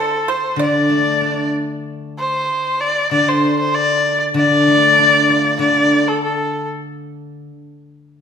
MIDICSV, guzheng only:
0, 0, Header, 1, 2, 480
1, 0, Start_track
1, 0, Tempo, 627615
1, 449, Time_signature, 2, 2, 24, 8
1, 6281, End_track
2, 0, Start_track
2, 0, Title_t, "Guzheng"
2, 0, Program_c, 0, 107
2, 431, Note_on_c, 0, 50, 60
2, 685, Note_on_c, 0, 57, 39
2, 928, Note_on_c, 0, 62, 39
2, 1663, Note_off_c, 0, 57, 0
2, 1898, Note_off_c, 0, 50, 0
2, 1905, Note_off_c, 0, 62, 0
2, 2379, Note_on_c, 0, 50, 58
2, 3311, Note_off_c, 0, 50, 0
2, 3320, Note_on_c, 0, 50, 63
2, 3578, Note_on_c, 0, 57, 47
2, 3812, Note_on_c, 0, 62, 49
2, 4053, Note_on_c, 0, 65, 42
2, 4266, Note_off_c, 0, 50, 0
2, 4275, Note_on_c, 0, 50, 55
2, 4530, Note_off_c, 0, 57, 0
2, 4769, Note_off_c, 0, 62, 0
2, 5012, Note_off_c, 0, 65, 0
2, 5725, Note_off_c, 0, 50, 0
2, 6281, End_track
0, 0, End_of_file